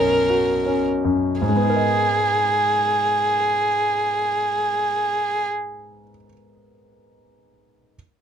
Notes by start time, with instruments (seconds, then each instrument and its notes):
Already playing: grand piano B1 F#2 C#4 D#4, violin A#4
0.30 grand piano F#4
0.66 grand piano C#4
1.05 grand piano F#2
1.42 grand piano G#2, violin G#4
1.49 grand piano G#3
1.56 grand piano B3
1.63 grand piano D#4
1.70 grand piano A#4
1.76 grand piano D#5